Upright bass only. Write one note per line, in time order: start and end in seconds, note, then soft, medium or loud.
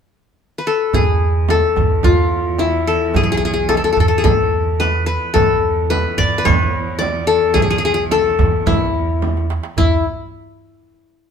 0.94 1.62 E2 medium
1.77 1.99 E2 medium
2.05 2.95 E2 medium
3.14 3.82 B1 medium
3.97 4.20 E2 medium
4.25 5.15 E2 medium
5.35 6.03 E2 medium
6.19 6.41 E2 medium
6.46 7.37 E2 medium
7.57 8.24 B1 medium
8.39 8.62 E2 medium
8.66 9.57 E2 medium
9.78 10.03 E2 medium